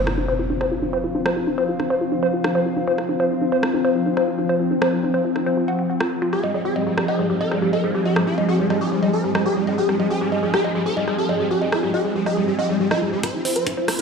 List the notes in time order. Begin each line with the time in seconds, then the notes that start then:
Already playing: F3 C4 F4, impact
0.07 F4 F5, cross-stick
0.18 D#4
0.28 C5
0.39 F4
0.50 D#4
0.61 C5, cross-stick
0.72 F4
0.82 D#4
0.93 C5
1.04 F4
1.15 D#4
1.26 C5, cross-stick
1.36 F4
1.47 D#4
1.58 C5
1.69 F4
1.80 D#4, cross-stick
1.90 C5
2.01 F4
2.12 D#4
2.23 C5
2.34 F4
2.44 D#4, cross-stick
2.55 C5
2.66 F4
2.77 D#4
2.88 C5
2.98 F4, cross-stick
3.09 D#4
3.20 C5
3.31 F4
3.41 D#4
3.52 C5
3.63 F4, cross-stick
3.74 D#4
3.85 C5
3.95 F4
4.06 D#4
4.17 C5, cross-stick
4.28 F4
4.39 D#4
4.49 C5
4.60 F4
4.71 D#4
4.82 C5, cross-stick
4.93 F4
5.03 D#4
5.14 C5
5.25 F4
5.36 D#4, cross-stick
5.46 C5
5.57 F4
5.68 F#5
5.79 F#5
5.90 F#5
6.00 F4, cross-stick
6.22 F4
6.33 D#4 G4 G#4, cross-stick
6.44 G#3 D#5
6.54 G#3 G#4
6.65 G4 G#4
6.76 G#3 D#5
6.84 G#3 G#4
6.98 G#3 G4, cross-stick
7.08 G#4 D#5
7.19 G#3 G#4 G#5
7.30 G#3 G4
7.41 A#4 D#5
7.52 G#3 G#4, cross-stick
7.62 G#3 G4
7.73 A#4 D#5
7.84 G#3 G#4
7.95 G#3 G4
8.05 G4 D#5
8.16 G#3 G#4, cross-stick
8.27 F4 G4
8.38 G#3 D#5
8.49 G4 G#4
8.59 G#3 G4
8.70 G#3 D#5, cross-stick
8.81 G#4
8.92 G#3 G4
9.03 G#3 D#5
9.13 G#4 A#4
9.24 G#3 G4
9.35 G#3 D#5, cross-stick
9.46 G#4
9.56 G#3 G4
9.67 G#3 D#5
9.78 G#4
9.89 G#3 G4, cross-stick
10.00 G#3 D#5
10.10 G#4
10.21 G#3 G4
10.32 G#3 D#5
10.43 G#3 G#4
10.54 G4 G#4, cross-stick
10.64 G#3 D#5
10.75 G#3 G#4
10.86 G4 A#4
10.97 G#3 D#5
11.08 G#3 G#4, cross-stick
11.18 G4 A#4
11.29 G#3 D#5
11.40 G#3 G#4
11.51 G4
11.62 G#3 D#5
11.72 F4 G#4, cross-stick
11.83 G#3 G4
11.94 G4 D#5
12.05 G#3 G#4
12.16 G#3 G4
12.26 G#4 D#5, cross-stick
12.37 G#3 G#4
12.48 G#3 G4
12.59 G4 D#5
12.69 G#3 G#4
12.80 G#3 G4
12.91 F4 D#5, cross-stick
13.02 G#3 G#4
13.13 G#3 G4
13.23 C4 F4 C5, kick, cross-stick, closed hi-hat, riser
13.34 D#4 F4
13.45 F4 C5, open hi-hat
13.56 F4 C5, closed hi-hat
13.67 D#4 F4, kick, closed hi-hat
13.77 F4 C5
13.88 F4, cross-stick, open hi-hat